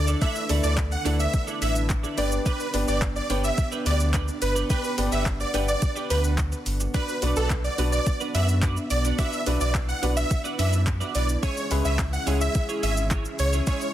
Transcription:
Already playing: D2 D3 D4 E4 A4
0.07 D4 E4 A4 D5, shaker
0.21 A3 D4 E4 A4 B4 D5 E5, kick, closed hi-hat, shaker
0.35 muted clean electric guitar stroke, shaker
0.49 D2 A3 D4 E4 A4 D5, open hi-hat, shaker
0.63 D2 D4 E4 A4 D5, shaker
0.78 kick, clap, closed hi-hat, shaker
0.91 F#5, muted clean electric guitar stroke, shaker
1.05 D2 A3 D4 E4 A4 D5, open hi-hat, shaker
1.19 E5, muted clean electric guitar stroke, shaker
1.33 muted clean electric guitar stroke, kick, closed hi-hat, shaker
1.47 D4 E4 A4 D5, shaker
1.61 A1 D4 E4 A4 D5 E5, open hi-hat, shaker
1.75 muted clean electric guitar stroke, shaker
1.90 muted clean electric guitar stroke, kick, clap, closed hi-hat, shaker
2.03 D4 E4 A4 D5, shaker
2.17 G1 B3 D4 G4 B4 D5, open hi-hat, shaker
2.32 muted clean electric guitar stroke, shaker
2.45 D4 G4 B4 D5, kick, closed hi-hat, shaker
2.60 muted clean electric guitar stroke, shaker
2.74 G1 B3 D4 G4 B4 D5, open hi-hat, shaker
2.88 G1 D4 G4 B4 D5, shaker
3.02 kick, clap, closed hi-hat, shaker
3.16 D5, muted clean electric guitar stroke, shaker
3.30 G1 B3 D4 G4 B4 C#5 D5, open hi-hat, shaker
3.44 E5, muted clean electric guitar stroke, shaker
3.58 muted clean electric guitar stroke, kick, closed hi-hat, shaker
3.72 D4 G4 B4 D5, shaker
3.86 D2 D4 G4 B4 D5, open hi-hat, shaker
4.00 muted clean electric guitar stroke, shaker
4.14 D4 G4 B4 D5, kick, clap, closed hi-hat, shaker
4.28 muted clean electric guitar stroke, shaker
4.42 G1 B4 F#5, muted clean electric guitar stroke, open hi-hat, shaker
4.55 D4 G4 B4 D5, shaker
4.70 B3 D4 G4 B4 D5, kick, closed hi-hat, shaker
4.84 muted clean electric guitar stroke, shaker
4.97 G1 B3 D4 G4 B4 D5, open hi-hat, shaker
5.11 G1 D4 G4 B4 D5 E5, shaker
5.26 kick, clap, closed hi-hat, shaker
5.40 D5, muted clean electric guitar stroke, shaker
5.54 G1 B3 D4 G4 B4 D5, open hi-hat, shaker
5.68 D5, muted clean electric guitar stroke, shaker
5.82 muted clean electric guitar stroke, kick, closed hi-hat, shaker
5.96 D4 G4 B4 D5, shaker
6.10 D2 D4 G4 B4 D5, open hi-hat, shaker
6.24 muted clean electric guitar stroke, shaker
6.38 muted clean electric guitar stroke, kick, clap, closed hi-hat, shaker
6.52 muted clean electric guitar stroke, shaker
6.66 G1, open hi-hat, shaker
6.80 muted clean electric guitar stroke, shaker
6.94 B3 D4 F#4 B4 D5, kick, closed hi-hat, shaker
7.08 muted clean electric guitar stroke, shaker
7.22 B1 B3 D4 F#4 B4 D5, open hi-hat, shaker
7.36 B1 D4 F#4 A4 B4 D5, shaker
7.50 kick, clap, closed hi-hat, shaker
7.64 D5, muted clean electric guitar stroke, shaker
7.78 B1 B3 D4 F#4 B4 D5, open hi-hat, shaker
7.92 D5, muted clean electric guitar stroke, shaker
8.06 muted clean electric guitar stroke, kick, closed hi-hat, shaker
8.20 D4 F#4 B4 D5, shaker
8.34 F#2 D4 F#4 B4 D5 E5, open hi-hat, shaker
8.48 muted clean electric guitar stroke, shaker
8.62 D4 F#4 B4 D5, kick, clap, closed hi-hat, shaker
8.76 muted clean electric guitar stroke, shaker
8.90 B1 D5, muted clean electric guitar stroke, open hi-hat, shaker
9.04 D4 F#4 B4 D5, shaker
9.18 B3 D4 E4 F#4 B4 D5 E5, kick, closed hi-hat, shaker
9.32 muted clean electric guitar stroke, shaker
9.46 B1 B3 D4 F#4 B4 D5, open hi-hat, shaker
9.60 B1 D4 F#4 B4 D5, shaker
9.75 kick, clap, closed hi-hat, shaker
9.88 F#5, muted clean electric guitar stroke, shaker
10.02 B1 B3 D4 F#4 B4 D5, open hi-hat, shaker
10.16 E5, muted clean electric guitar stroke, shaker
10.30 muted clean electric guitar stroke, kick, closed hi-hat, shaker
10.44 D4 F#4 B4 D5, shaker
10.58 F#2 D4 F#4 B4 D5 E5, open hi-hat, shaker
10.72 muted clean electric guitar stroke, shaker
10.87 muted clean electric guitar stroke, kick, clap, closed hi-hat, shaker
11.00 D4 F#4 B4 D5, shaker
11.15 B1 D4 F#4 B4 D5, open hi-hat, shaker
11.29 muted clean electric guitar stroke, shaker
11.43 C#3 G#3 C#4 E4 G#4 C#5, kick, closed hi-hat, shaker
11.57 muted clean electric guitar stroke, shaker
11.71 C#2 G#3 C#4 E4 G#4 B4 C#5, open hi-hat, shaker
11.85 C#2 C#4 E4 G#4 C#5 E5, shaker
11.99 kick, clap, closed hi-hat, shaker
12.13 F#5, muted clean electric guitar stroke, shaker
12.27 C#2 G#3 C#4 E4 G#4 C#5, open hi-hat, shaker
12.41 E5, muted clean electric guitar stroke, shaker
12.55 muted clean electric guitar stroke, kick, closed hi-hat, shaker
12.69 C#4 E4 G#4 C#5, shaker
12.82 G#1 C#4 E4 G#4 C#5 E5, open hi-hat, shaker
12.97 muted clean electric guitar stroke, shaker
13.11 C#4 E4 G#4 C#5, kick, clap, closed hi-hat, shaker
13.25 muted clean electric guitar stroke, shaker
13.39 C#2 C#5, muted clean electric guitar stroke, open hi-hat, shaker
13.53 C#4 E4 G#4 C#5, shaker
13.67 G#3 C#4 E4 G#4 C#5, kick, closed hi-hat, shaker
13.81 muted clean electric guitar stroke, shaker

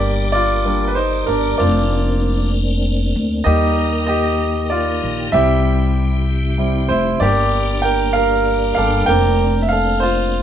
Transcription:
Already playing: G1 G3 A#3 D4 G4 A#4 D5
0.32 F4 D5
0.65 G3 A#3 D4
0.88 B4
0.95 D#4 C5
1.26 G1 D4 A#4
1.58 F1 A#3 C4 D4 F4 D5
3.15 D2
3.44 D#2 D#3 G3 A#3 D#4 G4 D#5
4.07 G4 D#5
4.70 F4 D5
5.03 A#1
5.32 C2 C3 G3 C4 E4 G4 E5
6.58 G3 C4 E4
6.88 F1 E4 C5
7.20 G1 G3 A#3 D4 G4 D5
7.82 A#4 G5
8.13 A#4 F5
8.75 G1 G3 A#3 D4 A4 F5
9.06 F1 A#3 C4 D4 A#4 G5
9.62 E5
9.69 A4 F5
10.00 F4 C5

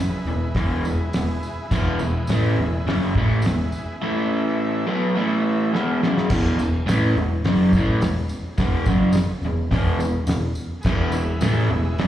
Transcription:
Already playing: E4 G#4 B4
0.25 E1 E2 B2, tambourine
0.55 E1 E2 B2 E3, kick, snare, open hi-hat
0.83 E1 E2 B2, tambourine
1.13 E1 E2 B2, snare, open hi-hat, tambourine
1.43 tambourine
1.66 E4
1.70 E1 E2 B2 E3 G#4 B4, kick, snare, tambourine, crash
1.99 E1 E2 B2, tambourine
2.27 A1 A2 E3, snare, open hi-hat, tambourine
2.32 A3
2.56 E1 E2 B2, tambourine
2.86 F#1 F#2 C#3 F#3, snare, open hi-hat
3.16 A1 A2 E3 A3, kick
3.42 E1, open hi-hat, tambourine
3.46 E2 B2, snare
3.72 tambourine
4.00 A2 E3 A3 E4 A4 E5
4.87 B2 F#3 B3
5.15 A2 E3 A3 E4 A4 E5
5.71 E2 B2 E3 G#4 B4 E5
5.75 snare
6.03 F#2 C#3 F#3, snare
6.18 snare
6.30 E1 E2 B2 E3, kick, snare, crash, tambourine
6.58 E1 E2 B2, tambourine
6.86 A1 A2 E3 A3, snare, open hi-hat, tambourine
7.15 E1 E2 B2, tambourine
7.44 F#1 F#2 C#3 F#3, snare, open hi-hat
7.73 A1 A2 E3 A3, kick, tambourine
8.00 E1 E2 B2, snare, open hi-hat, tambourine
8.29 tambourine
8.58 E1 E2 B2 E3, kick, snare, open hi-hat, tambourine
8.86 F#1 F#2 C#3 F#3, kick, tambourine
9.13 muted picked electric bass stroke, muted overdriven electric guitar stroke, snare, open hi-hat, tambourine
9.42 E1 E2 B2, tambourine
9.71 E1 E2 B2 E3, kick, snare, open hi-hat
9.99 E1 E2 B2, tambourine
10.27 E1 E2 B2, snare, open hi-hat, tambourine
10.55 tambourine
10.81 E1 G#4 B4, kick, tambourine, crash
10.86 E2 B2 E3 E5, snare
11.12 E1 E2 B2, tambourine
11.41 A1 A2 E3 A3, snare, open hi-hat, tambourine
11.68 E1 E2 B2
11.98 F#1 F#2 C#3 F#3, snare, open hi-hat

